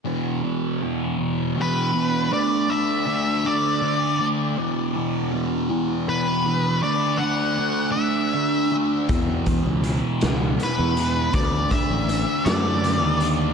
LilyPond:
<<
  \new Staff \with { instrumentName = "Lead electric guitar" } { \time 6/8 \key d \lydian \tempo 4. = 53 r2 b'4 | d''8 e''4 d''4 r8 | r2 b'4 | d''8 fis''4 e''4 r8 |
r2 b'4 | d''8 e''4 d''4 r8 | }
  \new Staff \with { instrumentName = "Distorted electric guitar" } { \clef bass \time 6/8 \key d \lydian <e, b, e>8 <b, e>8 <e, b, e>8 <b, e>8 <e, b, e>8 <b, e>8 | <d a d'>8 <a d'>8 <d a d'>8 <a d'>8 <d a d'>8 <a d'>8 | <e, b, e>8 <b, e>8 <e, b, e>8 <b, e>8 <e, b, e>8 <b, e>8 | <d a d'>8 <a d'>8 <d a d'>8 <a d'>8 <d a d'>8 <a d'>8 |
<e, b, e>8 <b, e>8 <e, b, e>8 <b, e>8 <e, b, e>8 <b, e>8 | <d a d'>8 <a d'>8 <d a d'>8 <a d'>8 <d a d'>8 <a d'>8 | }
  \new Staff \with { instrumentName = "Fingered electric bass" } { \clef bass \time 6/8 \key d \lydian r2. | r2. | r2. | r2. |
e,8. cis,8 r16 cis,8 r16 e,8. | d,8 r16 a,,8 r16 fis,8. dis,8. | }
  \new DrumStaff \with { instrumentName = "Drums" } \drummode { \time 6/8 r4. r4. | r4. r4. | r4. r4. | r4. r4. |
<hh bd>8 <hh bd>8 hh8 <hh sn>8 hh8 hh8 | <hh bd>8 <hh bd>8 hh8 <hh sn>8 hh8 hh8 | }
>>